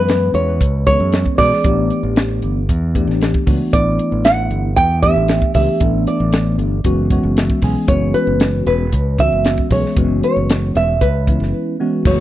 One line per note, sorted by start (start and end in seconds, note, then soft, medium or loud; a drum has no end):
0.00 0.32 F#2 medium
0.00 0.53 E3 medium
0.00 0.53 G#3 medium
0.00 0.53 B3 medium
0.00 0.53 C#4 medium
0.00 0.53 G#4 medium
0.00 0.32 B4 medium
0.09 snare medium
0.09 closed hi-hat medium
0.34 0.59 E2 medium
0.34 0.85 C#5 medium
0.34 closed hi-hat medium
0.61 0.97 C#2 medium
0.61 kick medium
0.61 closed hi-hat medium
0.86 1.35 E3 medium
0.86 1.35 G#3 soft
0.86 1.35 B3 medium
0.86 1.35 C#4 medium
0.86 1.35 G#4 medium
0.86 1.38 C#5 medium
0.86 kick medium
0.86 closed hi-hat medium
1.00 1.24 F#2 medium
1.12 snare medium
1.12 closed hi-hat medium
1.26 kick medium
1.38 1.51 B2 medium
1.38 1.62 E3 medium
1.38 1.63 G#3 medium
1.38 1.63 B3 medium
1.38 1.63 C#4 medium
1.38 1.63 G#4 medium
1.38 2.91 D5 medium
1.38 kick medium
1.38 open hi-hat medium
1.53 snare soft
1.64 1.89 A1 medium
1.64 2.61 E3 medium
1.64 2.61 A3 medium
1.64 2.61 B3 medium
1.64 2.61 D4 medium
1.64 2.61 G4 medium
1.64 kick loud
1.64 closed hi-hat medium
1.90 closed hi-hat medium
2.03 2.40 A1 medium
2.16 snare loud
2.16 closed hi-hat medium
2.42 2.67 G1 medium
2.42 closed hi-hat soft
2.69 3.06 E2 medium
2.69 kick medium
2.69 closed hi-hat medium
2.95 3.43 E3 medium
2.95 3.43 A3 medium
2.95 3.43 B3 medium
2.95 3.44 D4 medium
2.95 3.43 G4 medium
2.95 kick medium
2.95 closed hi-hat medium
3.08 3.32 A1 medium
3.08 snare soft
3.21 snare medium
3.21 closed hi-hat medium
3.34 kick medium
3.46 3.59 C#2 medium
3.46 3.71 E3 medium
3.46 3.71 A3 medium
3.46 3.71 B3 medium
3.46 3.71 D4 medium
3.46 3.71 F#4 medium
3.46 kick medium
3.46 open hi-hat medium
3.73 3.97 A1 medium
3.73 4.69 E3 medium
3.73 4.69 A3 medium
3.73 4.69 B3 medium
3.73 4.69 D4 medium
3.73 4.69 E4 medium
3.73 4.27 D5 medium
3.73 kick medium
3.73 closed hi-hat medium
3.99 closed hi-hat medium
4.12 4.48 A1 medium
4.25 4.73 F#5 medium
4.25 snare loud
4.25 closed hi-hat medium
4.50 4.75 G1 medium
4.50 closed hi-hat medium
4.76 5.13 E2 medium
4.76 5.01 G5 medium
4.76 kick medium
4.76 closed hi-hat medium
5.02 5.51 E3 medium
5.02 5.51 A3 soft
5.02 5.51 B3 medium
5.02 5.52 D4 medium
5.02 5.51 G4 medium
5.02 5.51 E5 medium
5.02 kick medium
5.02 closed hi-hat medium
5.16 5.40 A1 medium
5.28 snare medium
5.28 closed hi-hat medium
5.42 kick medium
5.54 5.67 C#2 medium
5.54 5.79 E3 medium
5.54 5.79 A3 medium
5.54 5.79 B3 medium
5.54 5.79 D4 medium
5.54 5.79 G4 medium
5.54 6.07 E5 medium
5.54 kick medium
5.54 open hi-hat medium
5.80 6.05 A1 medium
5.80 6.77 E3 medium
5.80 6.77 A3 medium
5.80 6.77 B3 medium
5.80 6.77 D4 medium
5.80 6.77 A4 medium
5.80 kick medium
5.80 closed hi-hat medium
6.07 6.56 D5 medium
6.07 closed hi-hat medium
6.20 6.56 A1 medium
6.33 snare loud
6.33 closed hi-hat medium
6.58 6.83 G1 medium
6.58 closed hi-hat medium
6.84 7.21 F#1 medium
6.84 7.09 E3 medium
6.84 7.09 G#3 medium
6.84 7.09 B3 medium
6.84 7.09 C#4 medium
6.84 7.09 F#4 loud
6.84 kick medium
6.84 closed hi-hat medium
7.10 7.59 E3 medium
7.10 7.59 G#3 medium
7.10 7.59 B3 medium
7.10 7.59 C#4 medium
7.10 7.59 F#4 medium
7.10 7.35 C#5 medium
7.10 kick medium
7.10 closed hi-hat medium
7.23 7.48 F#1 medium
7.37 7.61 E5 medium
7.37 snare medium
7.37 closed hi-hat medium
7.50 kick medium
7.62 7.75 B1 medium
7.62 7.87 E3 medium
7.62 7.87 G#3 medium
7.62 7.87 B3 medium
7.62 7.87 C#4 medium
7.62 7.87 G#4 medium
7.62 7.88 G#5 medium
7.62 kick medium
7.62 open hi-hat medium
7.88 8.13 F#1 medium
7.88 8.84 E3 medium
7.88 8.84 G#3 medium
7.88 8.84 B3 medium
7.88 8.84 C#4 medium
7.88 8.84 F#4 medium
7.88 8.15 C#5 medium
7.88 kick loud
7.88 closed hi-hat medium
8.14 8.66 B4 medium
8.14 closed hi-hat medium
8.27 8.63 F#1 medium
8.40 snare loud
8.40 closed hi-hat medium
8.67 8.91 E1 medium
8.67 9.20 B4 medium
8.67 closed hi-hat medium
8.92 9.29 C#2 medium
8.92 kick medium
8.92 closed hi-hat medium
9.18 9.66 E3 medium
9.18 9.66 G#3 medium
9.18 9.67 B3 medium
9.18 9.67 C#4 medium
9.18 9.67 F#4 medium
9.18 9.72 E5 medium
9.18 kick medium
9.18 closed hi-hat medium
9.32 9.56 F#1 medium
9.44 snare medium
9.44 closed hi-hat medium
9.58 kick medium
9.70 9.83 B1 medium
9.70 9.95 E3 medium
9.70 9.95 G#3 medium
9.70 9.95 B3 medium
9.70 9.95 C#4 medium
9.70 9.95 G#4 medium
9.70 10.23 C#5 medium
9.70 kick medium
9.70 open hi-hat medium
9.86 snare soft
9.96 10.21 F#1 medium
9.96 10.93 E3 medium
9.96 10.93 G#3 medium
9.96 10.93 B3 medium
9.96 10.93 C#4 medium
9.96 10.93 F#4 medium
9.96 kick medium
9.96 closed hi-hat medium
10.23 10.76 C#5 medium
10.23 closed hi-hat medium
10.37 10.72 F#1 medium
10.49 snare loud
10.49 closed hi-hat medium
10.75 10.99 E1 medium
10.75 11.02 E5 medium
10.75 closed hi-hat medium
11.01 11.37 C#2 medium
11.01 11.75 B4 medium
11.01 kick medium
11.01 closed hi-hat medium
11.27 11.75 E3 medium
11.27 11.75 G#3 soft
11.27 11.75 B3 soft
11.27 11.75 C#4 medium
11.27 11.76 E4 medium
11.27 kick medium
11.27 closed hi-hat medium
11.40 11.52 F#1 medium
11.40 snare soft
11.80 12.03 E3 medium
11.80 12.03 G#3 medium
11.80 12.03 B3 medium
11.80 12.03 C#4 medium
11.80 12.04 F#4 medium
12.05 12.20 F#1 medium
12.05 12.20 E3 medium
12.05 12.20 G#3 medium
12.05 12.20 A3 medium
12.05 12.20 B3 medium
12.05 12.20 F#4 medium
12.05 12.20 C#5 medium
12.05 kick loud
12.05 crash medium